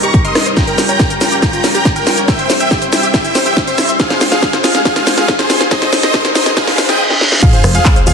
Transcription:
Already playing: G3 C4 D#4 A#4
0.03 G4 A#5 C#6, closed hi-hat
0.14 G4, kick, closed hi-hat
0.24 A#4 D#5 C6, closed hi-hat
0.35 D#4, cross-stick, snare, open hi-hat
0.46 C5, closed hi-hat
0.57 C#4 F4 G5 A#5, kick, snare, closed hi-hat, riser, shaker
0.67 A#4, closed hi-hat
0.78 A#4, snare, open hi-hat, shaker
0.89 C#5 G5 A#5, closed hi-hat, shaker
1.00 G4, kick, snare, closed hi-hat, shaker
1.10 A#4, closed hi-hat, shaker
1.21 F4 G5 A#5, snare, open hi-hat, shaker
1.32 G4, closed hi-hat, shaker
1.42 F4 G5 A#5, kick, snare, closed hi-hat, shaker
1.53 F4, closed hi-hat, shaker
1.64 A#4, snare, open hi-hat, shaker
1.75 G4 G5 A#5, closed hi-hat, shaker
1.85 G4, kick, snare, closed hi-hat, shaker
1.96 A#4 G5, closed hi-hat, shaker
2.07 F4, snare, open hi-hat, shaker
2.17 C#5, closed hi-hat, shaker
2.28 C4 E4 C5 E5 G5, kick, snare, closed hi-hat, shaker
2.39 C5, closed hi-hat
2.50 C5, snare, open hi-hat, shaker
2.60 E5 G5, closed hi-hat, shaker
2.71 G4, kick, snare, closed hi-hat, shaker
2.82 C5, closed hi-hat, shaker
2.92 E4 E5 G5, snare, open hi-hat, shaker
3.03 G4, closed hi-hat, shaker
3.14 E4 E5 G5, kick, snare, closed hi-hat, shaker
3.25 E4, closed hi-hat, shaker
3.35 C5, snare, open hi-hat, shaker
3.46 G4 E5 G5, closed hi-hat, shaker
3.57 G4, kick, snare, closed hi-hat, shaker
3.67 C5 E5, closed hi-hat, shaker
3.78 E4, snare, open hi-hat, shaker
3.89 E5, closed hi-hat, shaker
4.00 G#3 F4 G#4 F5, kick, snare, closed hi-hat, shaker
4.10 C5, snare, closed hi-hat
4.21 C5, snare, open hi-hat, shaker
4.32 G#4 F5, snare, closed hi-hat, shaker
4.42 G#4, kick, snare, closed hi-hat, shaker
4.53 C5, snare, closed hi-hat, shaker
4.64 F4 G#4 F5, snare, open hi-hat, shaker
4.75 G#4, snare, closed hi-hat, shaker
4.85 F4 G#4 F5, kick, snare, closed hi-hat, shaker
4.96 F4, snare, closed hi-hat, shaker
5.07 C5, snare, open hi-hat, shaker
5.17 G#4 F5, snare, closed hi-hat, shaker
5.28 G#4, kick, snare, closed hi-hat, shaker
5.39 G#4 C5, snare, closed hi-hat, shaker
5.50 F4, snare, open hi-hat, shaker
5.60 F5, snare, closed hi-hat, shaker
5.71 D#4 C5 D#5, kick, snare, closed hi-hat, shaker
5.82 C5, snare, closed hi-hat
5.93 C5, snare, open hi-hat, shaker
6.03 C5 D#5, snare, closed hi-hat, shaker
6.14 G#4, kick, snare, closed hi-hat, shaker
6.25 C5, snare, closed hi-hat, shaker
6.35 D#4 C5 D#5, snare, open hi-hat, shaker
6.46 G#4, snare, closed hi-hat, shaker
6.57 D#4 G#4 F5, kick, snare, closed hi-hat, reverse cymbal, shaker
6.67 D#4, snare, open hi-hat, shaker
6.78 C5, snare, open hi-hat, shaker
6.89 G#4 D#5 G5, snare, closed hi-hat, shaker
7.10 snare
7.21 snare
7.32 snare
7.42 G#3 C4 F4 G#4 C5 F5, kick, closed hi-hat, crash, sub drop, shaker
7.53 C5, closed hi-hat
7.64 F1 C5, cross-stick, open hi-hat, shaker
7.75 G#4 F5, closed hi-hat, shaker
7.85 G#4, kick, clap, closed hi-hat, shaker
7.96 C5, closed hi-hat, shaker
8.07 D#1 F4 G#4 F5, open hi-hat, shaker

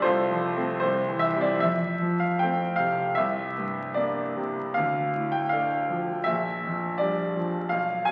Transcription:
0.02 C2 F4 A4 C5
0.30 F3
0.57 A3 C4
0.80 C2 C5
1.09 E3
1.19 E5
1.36 G3 C4
1.41 D5
1.59 F2 E5
2.02 F3
2.20 F5
2.39 A3 C4 G5
2.76 C3 F5
3.15 C2 E5
3.58 G2
3.94 A#3 D4 D5
4.36 C3
4.74 D2 F5
5.14 A2
5.32 G5
5.49 A3 D4 F5
5.89 F3
6.24 A#1 E5
6.64 F2
6.98 G3 D4 D5
7.36 F3
7.69 B1 F5
8.05 B2 G#5

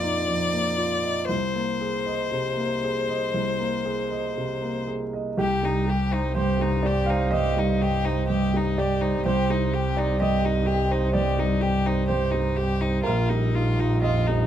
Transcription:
Already playing: F2 A#3 F4 D5 D#5
0.04 D#4
0.28 F2
0.53 A#3
0.78 F4
1.03 D#5
1.29 C2 C5
1.55 A#3
1.81 G#4
2.06 D#5
2.31 C3
2.57 A#3
2.84 G#4
3.08 D#5
3.34 C2
3.59 A#3
3.85 G#4
4.11 D#5
4.37 C3
4.62 A#3
4.88 G#4
5.13 D#5
5.37 C2 G4
5.63 G3 D#4
5.87 G4
6.11 D#4 C5
6.35 G2 G4 C5
6.59 G3 D#4
6.83 G4 D5
7.06 D#4 C5 F5
7.31 G2 G4 D#5
7.57 G3 D#4
7.81 G4
8.05 D#4 C5
8.28 G2 G4
8.54 G3 D#4
8.78 G4 D5
9.01 D#4 C5
9.25 C2 G4 C5
9.50 G3 D#4
9.74 G4
9.97 D#4 C5 D5
10.20 G2 G4 D#5
10.45 G3 D#4
10.66 G4
10.91 D#4 C5
11.13 G2 G4 D5
11.38 G3 D#4
11.61 G4
11.86 D#4 C5
12.08 G2 G4 C5
12.31 G3 D#4
12.57 G4
12.81 D#4 C5
13.04 A#1 F4 A#4
13.29 G3 D#4
13.55 D#4 F4
13.79 D#4 F4
14.02 F2 F4 D#5
14.27 G3 D#4

